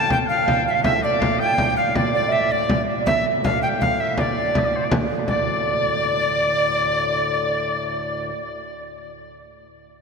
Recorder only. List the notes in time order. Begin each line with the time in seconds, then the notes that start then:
0.12 G5
0.29 F5
0.68 E5 F5
0.75 F5
0.84 E5
1.04 D5
1.20 F5
1.40 G5
1.76 F5
1.95 D5
2.14 D5
2.32 E5
2.52 D5
3.06 E5
3.44 F5
3.62 G5
3.81 F5
4.00 E5
4.19 D5
5.28 D5